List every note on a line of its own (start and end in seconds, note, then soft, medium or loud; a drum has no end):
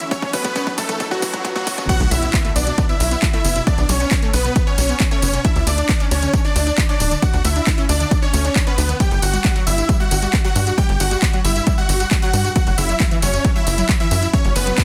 0.00 0.07 E3 medium
0.00 1.85 F#3 medium
0.00 1.85 A3 medium
0.00 1.85 C#4 medium
0.00 closed hi-hat medium
0.00 tambourine soft
0.00 riser medium
0.11 0.18 F#3 medium
0.11 0.30 C#4 medium
0.11 0.30 C#5 loud
0.11 0.30 C#5 medium
0.11 kick loud
0.11 closed hi-hat medium
0.11 tambourine soft
0.22 0.30 F#1 loud
0.22 0.26 F#3 medium
0.22 kick medium
0.22 tambourine soft
0.33 0.50 F#1 loud
0.33 0.40 F#3 medium
0.33 0.72 B3 medium
0.33 0.72 B4 loud
0.33 kick loud
0.33 open hi-hat loud
0.33 tambourine medium
0.44 0.49 F#4 medium
0.44 kick medium
0.44 closed hi-hat medium
0.44 tambourine soft
0.56 0.66 C#4 loud
0.56 kick loud
0.56 closed hi-hat medium
0.56 tambourine soft
0.67 0.73 F#3 medium
0.67 kick medium
0.67 tambourine soft
0.78 0.94 F#1 medium
0.78 0.82 F#2 loud
0.78 1.07 A3 medium
0.78 1.07 A4 medium
0.78 kick loud
0.78 open hi-hat loud
0.78 tambourine medium
0.89 0.96 E3 medium
0.89 kick medium
0.89 closed hi-hat medium
0.89 tambourine soft
1.00 1.07 F#3 medium
1.00 kick loud
1.00 closed hi-hat medium
1.00 tambourine soft
1.00 swell medium
1.11 1.49 F#3 medium
1.11 1.15 F#3 medium
1.11 1.49 F#4 loud
1.11 1.49 F#4 medium
1.11 kick medium
1.11 tambourine soft
1.22 1.39 F#1 loud
1.22 1.26 E3 medium
1.22 kick loud
1.22 open hi-hat loud
1.22 tambourine medium
1.33 1.40 F#3 medium
1.33 kick medium
1.33 closed hi-hat medium
1.33 tambourine soft
1.45 1.49 F#3 medium
1.45 kick loud
1.45 closed hi-hat medium
1.45 tambourine soft
1.55 1.84 F#3 medium
1.55 1.66 A3 medium
1.55 1.84 F#4 loud
1.55 kick loud
1.55 tambourine soft
1.67 1.83 F#1 loud
1.67 1.71 C#4 medium
1.67 kick loud
1.67 open hi-hat loud
1.67 tambourine medium
1.78 1.85 C#4 medium
1.78 kick medium
1.78 closed hi-hat medium
1.78 tambourine soft
1.89 1.96 B3 medium
1.89 2.08 F#4 medium
1.89 2.08 F#5 loud
1.89 kick loud
1.89 closed hi-hat medium
1.89 tambourine soft
1.89 crash loud
1.89 impact medium
2.00 2.08 B1 loud
2.00 2.04 B3 medium
2.00 closed hi-hat soft
2.00 tambourine soft
2.11 2.27 B1 loud
2.11 2.21 F#3 medium
2.11 2.49 E4 medium
2.11 2.49 E5 loud
2.11 open hi-hat loud
2.11 tambourine medium
2.22 2.29 B3 medium
2.22 closed hi-hat medium
2.22 tambourine soft
2.33 2.40 B3 medium
2.33 kick loud
2.33 clap loud
2.33 closed hi-hat medium
2.33 tambourine soft
2.45 2.51 A3 loud
2.45 closed hi-hat soft
2.45 tambourine soft
2.56 2.72 B1 medium
2.56 2.66 B3 medium
2.56 2.84 D4 medium
2.56 2.84 D5 medium
2.56 open hi-hat medium
2.56 tambourine medium
2.67 2.73 B2 medium
2.67 closed hi-hat medium
2.67 tambourine soft
2.78 2.85 B3 medium
2.78 kick loud
2.78 closed hi-hat medium
2.78 tambourine soft
2.89 2.93 B3 medium
2.89 3.27 E4 medium
2.89 3.27 E5 loud
2.89 3.27 E5 medium
2.89 tambourine soft
3.00 3.16 B1 medium
3.00 3.10 F#3 medium
3.00 open hi-hat loud
3.00 tambourine medium
3.11 3.18 B3 medium
3.11 closed hi-hat medium
3.11 tambourine soft
3.22 3.29 B3 medium
3.22 kick loud
3.22 clap loud
3.22 closed hi-hat medium
3.22 tambourine soft
3.33 3.40 A3 loud
3.33 3.62 E4 medium
3.33 3.62 E5 loud
3.33 closed hi-hat soft
3.33 tambourine soft
3.44 3.61 F#1 medium
3.44 3.54 B3 medium
3.44 open hi-hat medium
3.44 tambourine medium
3.56 3.62 B2 medium
3.56 closed hi-hat medium
3.56 tambourine soft
3.67 3.73 B3 medium
3.67 3.86 D4 medium
3.67 3.86 D5 loud
3.67 kick loud
3.67 closed hi-hat medium
3.67 tambourine soft
3.78 3.86 B1 loud
3.78 3.82 B3 medium
3.78 closed hi-hat soft
3.78 tambourine soft
3.89 4.05 B1 loud
3.89 3.99 F#3 medium
3.89 4.27 C#4 medium
3.89 4.27 C#5 loud
3.89 open hi-hat loud
3.89 tambourine medium
4.00 4.07 B3 medium
4.00 closed hi-hat medium
4.00 tambourine soft
4.11 4.18 B3 medium
4.11 kick loud
4.11 clap loud
4.11 closed hi-hat medium
4.11 tambourine soft
4.22 4.29 A3 loud
4.22 closed hi-hat soft
4.22 tambourine soft
4.33 4.50 B1 medium
4.33 4.62 B3 medium
4.33 4.43 B3 medium
4.33 4.62 B4 loud
4.33 4.62 B4 medium
4.33 open hi-hat loud
4.33 tambourine medium
4.45 4.51 B2 medium
4.45 closed hi-hat medium
4.45 tambourine soft
4.56 4.62 B3 medium
4.56 kick loud
4.56 closed hi-hat medium
4.56 tambourine soft
4.67 4.71 B3 medium
4.67 5.05 C#4 medium
4.67 5.05 C#5 medium
4.67 5.05 C#5 loud
4.67 tambourine soft
4.78 4.94 B1 medium
4.78 4.88 F#3 medium
4.78 open hi-hat loud
4.78 tambourine medium
4.89 4.96 B3 medium
4.89 closed hi-hat medium
4.89 tambourine soft
5.00 kick loud
5.00 clap loud
5.00 closed hi-hat medium
5.00 tambourine soft
5.11 5.18 A3 loud
5.11 5.40 C#4 medium
5.11 5.40 C#5 loud
5.11 closed hi-hat soft
5.11 tambourine soft
5.22 5.39 F#1 medium
5.22 5.32 B3 medium
5.22 open hi-hat medium
5.22 tambourine medium
5.33 5.40 B2 medium
5.33 closed hi-hat medium
5.33 tambourine soft
5.45 5.51 D4 medium
5.45 5.64 E4 medium
5.45 5.64 E5 loud
5.45 kick loud
5.45 closed hi-hat medium
5.45 tambourine soft
5.56 5.64 D2 loud
5.56 5.60 D4 medium
5.56 closed hi-hat soft
5.56 tambourine soft
5.67 5.83 D2 loud
5.67 5.77 A3 medium
5.67 6.05 D4 medium
5.67 6.05 D5 medium
5.67 open hi-hat loud
5.67 tambourine medium
5.78 5.84 D4 medium
5.78 closed hi-hat medium
5.78 tambourine soft
5.89 5.96 D4 medium
5.89 kick loud
5.89 clap loud
5.89 closed hi-hat medium
5.89 tambourine soft
6.00 6.07 C#4 loud
6.00 closed hi-hat soft
6.00 tambourine soft
6.11 6.28 D2 medium
6.11 6.40 C#4 medium
6.11 6.21 D4 medium
6.11 6.40 C#5 medium
6.11 open hi-hat medium
6.11 tambourine medium
6.22 6.29 D3 medium
6.22 closed hi-hat medium
6.22 tambourine soft
6.34 6.40 D4 medium
6.34 kick loud
6.34 closed hi-hat medium
6.34 tambourine soft
6.45 6.49 D4 medium
6.45 6.83 D4 medium
6.45 6.83 D5 loud
6.45 tambourine soft
6.56 6.72 D2 medium
6.56 6.66 A3 medium
6.56 open hi-hat loud
6.56 tambourine medium
6.67 6.73 D4 medium
6.67 closed hi-hat medium
6.67 tambourine soft
6.78 6.85 D4 medium
6.78 kick loud
6.78 clap loud
6.78 closed hi-hat medium
6.78 tambourine soft
6.89 6.96 C#4 loud
6.89 7.18 D4 medium
6.89 7.18 D5 loud
6.89 closed hi-hat soft
6.89 tambourine soft
7.00 7.16 D1 medium
7.00 7.10 D4 medium
7.00 open hi-hat loud
7.00 tambourine medium
7.11 7.18 D3 medium
7.11 closed hi-hat medium
7.11 tambourine soft
7.22 7.29 D4 medium
7.22 7.41 F#4 medium
7.22 7.41 F#5 loud
7.22 7.42 F#5 loud
7.22 kick loud
7.22 closed hi-hat medium
7.22 tambourine soft
7.33 7.42 D2 loud
7.33 7.37 D4 medium
7.33 closed hi-hat soft
7.33 tambourine soft
7.44 7.61 D2 loud
7.44 7.54 A3 medium
7.44 7.83 E4 medium
7.44 7.83 E5 loud
7.44 open hi-hat loud
7.44 tambourine medium
7.56 7.62 D4 medium
7.56 closed hi-hat soft
7.56 tambourine soft
7.67 7.73 D4 medium
7.67 kick loud
7.67 clap loud
7.67 closed hi-hat medium
7.67 tambourine soft
7.78 7.84 C#4 loud
7.78 closed hi-hat soft
7.78 tambourine soft
7.89 8.05 D2 medium
7.89 7.99 D4 medium
7.89 8.18 D4 medium
7.89 8.18 D5 medium
7.89 open hi-hat loud
7.89 tambourine medium
8.00 8.07 D3 medium
8.00 closed hi-hat soft
8.00 tambourine soft
8.11 8.18 D4 medium
8.11 kick loud
8.11 closed hi-hat medium
8.11 tambourine soft
8.22 8.61 C#4 medium
8.22 8.26 D4 medium
8.22 8.61 C#5 loud
8.22 tambourine soft
8.33 8.50 D2 medium
8.33 8.43 A3 medium
8.33 open hi-hat loud
8.33 tambourine medium
8.45 8.51 D4 medium
8.45 closed hi-hat soft
8.45 tambourine soft
8.56 8.62 D4 medium
8.56 kick loud
8.56 clap loud
8.56 closed hi-hat medium
8.56 tambourine soft
8.67 8.95 B3 medium
8.67 8.73 C#4 loud
8.67 8.95 B4 loud
8.67 closed hi-hat soft
8.67 tambourine soft
8.78 8.94 D2 loud
8.78 8.88 D4 medium
8.78 open hi-hat loud
8.78 tambourine medium
8.89 8.96 D3 medium
8.89 closed hi-hat medium
8.89 tambourine soft
9.00 9.07 G3 medium
9.00 9.19 G4 medium
9.00 9.19 G5 loud
9.00 9.19 G5 medium
9.00 kick loud
9.00 closed hi-hat medium
9.00 tambourine soft
9.11 9.19 G1 loud
9.11 9.15 G3 medium
9.11 closed hi-hat soft
9.11 tambourine soft
9.22 9.39 G1 loud
9.22 9.32 D3 medium
9.22 9.61 F#4 medium
9.22 9.60 F#5 loud
9.22 9.61 F#5 loud
9.22 open hi-hat loud
9.22 tambourine medium
9.33 9.40 G3 medium
9.33 closed hi-hat medium
9.33 tambourine soft
9.45 9.51 G3 medium
9.45 kick loud
9.45 clap loud
9.45 closed hi-hat medium
9.45 tambourine soft
9.56 9.62 F#3 loud
9.56 closed hi-hat soft
9.56 tambourine soft
9.67 9.83 G1 medium
9.67 9.77 G3 medium
9.67 9.95 E4 medium
9.67 9.95 E5 medium
9.67 9.95 E5 loud
9.67 open hi-hat medium
9.67 tambourine medium
9.78 9.84 G2 medium
9.78 closed hi-hat medium
9.78 tambourine soft
9.89 9.96 G3 medium
9.89 kick loud
9.89 closed hi-hat medium
9.89 tambourine soft
10.00 10.04 G3 medium
10.00 10.38 F#4 medium
10.00 10.38 F#5 loud
10.00 10.38 F#5 medium
10.00 tambourine soft
10.11 10.27 G1 medium
10.11 10.21 D3 medium
10.11 open hi-hat loud
10.11 tambourine medium
10.22 10.29 G3 medium
10.22 closed hi-hat medium
10.22 tambourine soft
10.33 10.40 G3 medium
10.33 kick loud
10.33 clap loud
10.33 closed hi-hat medium
10.33 tambourine soft
10.45 10.51 F#3 loud
10.45 10.73 F#4 medium
10.45 10.73 F#5 loud
10.45 closed hi-hat soft
10.45 tambourine soft
10.56 10.72 G2 medium
10.56 10.66 G3 medium
10.56 open hi-hat medium
10.56 tambourine medium
10.67 10.73 G2 medium
10.67 closed hi-hat soft
10.67 tambourine soft
10.78 10.84 G3 medium
10.78 10.97 G4 medium
10.78 10.97 G5 loud
10.78 kick loud
10.78 closed hi-hat medium
10.78 tambourine soft
10.89 10.97 G1 loud
10.89 10.93 G3 medium
10.89 closed hi-hat soft
10.89 tambourine soft
11.00 11.16 G1 loud
11.00 11.10 D3 medium
11.00 11.38 F#4 medium
11.00 11.38 F#5 loud
11.00 11.38 F#5 medium
11.00 open hi-hat loud
11.00 tambourine medium
11.11 11.18 G3 medium
11.11 closed hi-hat medium
11.11 tambourine soft
11.22 11.29 G3 medium
11.22 kick loud
11.22 clap loud
11.22 closed hi-hat medium
11.22 tambourine soft
11.33 11.40 F#3 loud
11.33 closed hi-hat soft
11.33 tambourine soft
11.44 11.61 G1 medium
11.44 11.54 G3 medium
11.44 11.73 E4 medium
11.44 11.73 E5 medium
11.44 open hi-hat medium
11.44 tambourine medium
11.56 11.62 G2 medium
11.56 closed hi-hat medium
11.56 tambourine soft
11.67 11.73 G3 medium
11.67 kick loud
11.67 closed hi-hat medium
11.67 tambourine soft
11.78 11.82 G3 medium
11.78 12.16 F#4 medium
11.78 12.16 F#5 loud
11.78 tambourine soft
11.89 12.05 G1 medium
11.89 11.99 D3 medium
11.89 open hi-hat loud
11.89 tambourine medium
12.00 12.07 G3 medium
12.00 closed hi-hat medium
12.00 tambourine soft
12.11 12.18 G3 medium
12.11 kick loud
12.11 clap loud
12.11 closed hi-hat medium
12.11 tambourine soft
12.22 12.29 F#3 loud
12.22 12.51 F#4 medium
12.22 12.51 F#5 loud
12.22 closed hi-hat soft
12.22 tambourine soft
12.33 12.50 G2 medium
12.33 12.43 G3 medium
12.33 open hi-hat medium
12.33 tambourine medium
12.45 12.51 G2 medium
12.45 closed hi-hat medium
12.45 tambourine soft
12.56 12.62 F#3 medium
12.56 12.75 F#4 medium
12.56 12.75 F#5 loud
12.56 kick loud
12.56 closed hi-hat medium
12.56 tambourine soft
12.67 12.75 F#1 loud
12.67 12.71 F#3 medium
12.67 closed hi-hat soft
12.67 tambourine soft
12.78 12.94 F#1 loud
12.78 12.88 C#3 medium
12.78 13.16 E4 medium
12.78 13.16 E5 loud
12.78 open hi-hat loud
12.78 tambourine medium
12.89 12.96 F#3 medium
12.89 closed hi-hat medium
12.89 tambourine soft
13.00 13.07 F#3 medium
13.00 kick loud
13.00 clap loud
13.00 closed hi-hat medium
13.00 tambourine soft
13.11 13.18 E3 loud
13.11 closed hi-hat soft
13.11 tambourine soft
13.22 13.39 F#1 medium
13.22 13.32 F#3 medium
13.22 13.51 C#4 medium
13.22 13.51 C#5 medium
13.22 13.51 C#5 loud
13.22 open hi-hat medium
13.22 tambourine medium
13.34 13.40 F#2 medium
13.34 closed hi-hat medium
13.34 tambourine soft
13.45 13.51 F#3 medium
13.45 kick loud
13.45 closed hi-hat medium
13.45 tambourine soft
13.56 13.60 F#3 medium
13.56 13.94 E4 medium
13.56 13.94 E5 medium
13.56 13.94 E5 loud
13.56 tambourine soft
13.67 13.83 F#1 medium
13.67 13.77 C#3 medium
13.67 open hi-hat loud
13.67 tambourine medium
13.78 13.85 F#3 medium
13.78 closed hi-hat medium
13.78 tambourine soft
13.89 13.96 F#3 medium
13.89 kick loud
13.89 clap loud
13.89 closed hi-hat medium
13.89 tambourine soft
14.00 14.07 E3 loud
14.00 14.29 E4 medium
14.00 14.29 E5 loud
14.00 closed hi-hat soft
14.00 tambourine soft
14.11 14.27 F#2 medium
14.11 14.21 F#3 medium
14.11 open hi-hat medium
14.11 tambourine medium
14.22 14.29 F#2 medium
14.22 closed hi-hat medium
14.22 tambourine soft
14.33 14.40 F#3 medium
14.33 14.53 C#4 medium
14.33 14.53 C#5 loud
14.33 kick loud
14.33 closed hi-hat medium
14.33 tambourine soft
14.45 14.53 F#1 loud
14.45 14.49 F#3 medium
14.45 closed hi-hat soft
14.45 tambourine soft
14.55 14.72 F#1 loud
14.55 14.66 C#3 medium
14.55 14.84 B3 medium
14.55 14.84 B4 loud
14.55 open hi-hat loud
14.55 tambourine medium
14.67 14.73 F#3 medium
14.67 closed hi-hat medium
14.67 tambourine soft
14.78 14.84 F#3 medium
14.78 kick loud
14.78 clap loud
14.78 closed hi-hat medium
14.78 tambourine soft